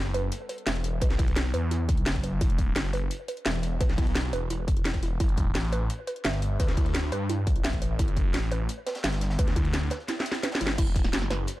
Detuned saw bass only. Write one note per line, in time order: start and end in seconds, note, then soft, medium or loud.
0.00 0.30 F#1 loud
0.67 1.00 E1 medium
1.01 1.52 B1 loud
1.54 2.05 E2 loud
2.06 2.40 F#1 loud
2.76 3.09 F#1 medium
3.46 3.79 E1 medium
3.81 4.32 B1 loud
4.33 5.19 E1 medium
5.55 5.89 A1 loud
6.25 6.58 G1 loud
6.60 7.11 D2 loud
7.12 7.63 G2 medium
7.64 7.98 A1 loud
7.99 8.33 G1 loud
8.34 8.68 A1 loud
9.04 9.37 G1 medium
10.61 10.77 G1 medium
10.78 11.12 E1 loud
11.13 11.47 F#1 loud